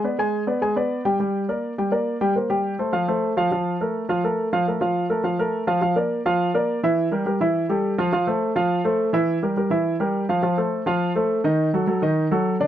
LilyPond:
\new Staff \with { instrumentName = "Grand piano" } { \time 4/4 \key bes \major \tempo 4 = 208 <ces' ces'' d''>8 <aes aes' aes''>4 <ces' ces'' d''>8 <aes aes' aes''>8 <ces' ces'' d''>4 <g g' g''>8 | <g g' g''>4 <bes bes' d''>4 <g g' g''>8 <bes bes' d''>4 <g g' g''>8 | <bes bes' c''>8 <g g' g''>4 <a a' c''>8 <f f' f''>8 <a a' c''>4 <f f' f''>8 | <f f' f''>4 <a a' bes'>4 <f f' f''>8 <a a' bes'>4 <f f' f''>8 |
<a a' bes'>8 <f f' f''>4 <a a' bes'>8 <f f' f''>8 <a a' bes'>4 <f f' f''>8 | <f f' f''>8 <bes bes' d''>4 <f f' f''>4 <bes bes' d''>4 <e e' e''>8~ | <e e' e''>8 <g g' bes'>8 <g g' bes'>8 <e e' e''>4 <g g' a'>4 <f f' f''>8 | <f f' f''>8 <a a' c''>4 <f f' f''>4 <a a' c''>4 <e e' e''>8~ |
<e e' e''>8 <g g' bes'>8 <g g' bes'>8 <e e' e''>4 <g g' bes'>4 <f f' f''>8 | <f f' f''>8 <a a' c''>4 <f f' f''>4 <a a' c''>4 <ees ees' ees''>8~ | <ees ees' ees''>8 <fis fis' a'>8 <fis fis' a'>8 <dis dis' dis''>4 <fis fis' a'>4 <d d' d''>8 | }